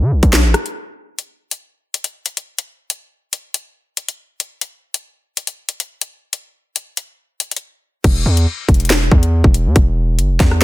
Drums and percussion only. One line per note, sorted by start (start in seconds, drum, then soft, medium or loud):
0.23 kick loud
0.23 closed hi-hat medium
0.33 snare loud
0.33 clap loud
0.33 closed hi-hat medium
0.54 cross-stick medium
0.54 closed hi-hat medium
0.66 closed hi-hat soft
1.19 closed hi-hat medium
1.51 closed hi-hat medium
1.94 closed hi-hat medium
2.04 closed hi-hat medium
2.26 closed hi-hat medium
2.37 closed hi-hat medium
2.58 closed hi-hat medium
2.90 closed hi-hat medium
3.33 closed hi-hat medium
3.54 closed hi-hat medium
3.97 closed hi-hat medium
4.09 closed hi-hat medium
4.40 closed hi-hat medium
4.61 closed hi-hat medium
4.94 closed hi-hat medium
5.37 closed hi-hat medium
5.47 closed hi-hat medium
5.69 closed hi-hat medium
5.80 closed hi-hat medium
6.01 closed hi-hat medium
6.33 closed hi-hat medium
6.76 closed hi-hat medium
6.97 closed hi-hat medium
7.40 closed hi-hat medium
7.51 closed hi-hat medium
7.56 closed hi-hat medium
8.04 kick loud
8.04 closed hi-hat medium
8.04 crash medium
8.37 closed hi-hat medium
8.69 kick loud
8.69 closed hi-hat medium
8.74 closed hi-hat medium
8.80 closed hi-hat medium
8.85 closed hi-hat medium
8.90 snare loud
8.90 clap loud
8.90 closed hi-hat medium
9.12 kick loud
9.23 closed hi-hat medium
9.44 kick medium
9.54 closed hi-hat medium
9.76 kick loud
9.76 closed hi-hat medium
10.19 closed hi-hat medium
10.40 kick loud
10.40 snare medium
10.40 closed hi-hat medium
10.51 cross-stick medium